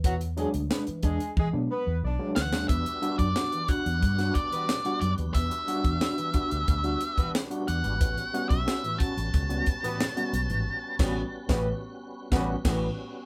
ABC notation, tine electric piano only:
X:1
M:4/4
L:1/16
Q:1/4=90
K:Edor
V:1 name="Tine electric piano"
E, z [F,^G,D] [G,D] [G,D] E, [G,D] z2 [F,G,D] z E, z [F,G,D] E, [F,G,D] | E, z [G,DF] [DF] [DF] E, [DF] z2 [G,DF] z E, z [G,DF] z E, | E, z [G,DF] [DF] [DF] E, [DF] z2 [G,DF] z E, z [G,DF] z E, | [A,,E,] z [G,B,CF] [CF] [CF] [A,,E,] [CF] z2 [G,B,CF] z [A,,E,] z [G,B,CF] z [A,,E,] |
z2 [G,B,CF]2 z [A,,E,]2 z3 [G,B,CF]2 [A,,E,]2 z2 |]